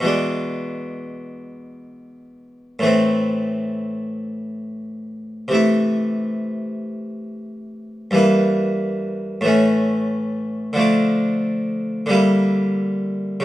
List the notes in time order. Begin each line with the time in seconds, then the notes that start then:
0.00 B2 E3
0.05 G#3 D4
2.79 A2 E3 A3
2.85 C4
5.48 C3 E3
5.53 A3 E4
8.11 G2 E3 A#3
8.17 E4
9.41 A2 E3
9.45 A3 C#4
10.73 D3 F3
10.77 A3 D4
12.06 D3 G3
12.10 A#3 E4
13.40 C#3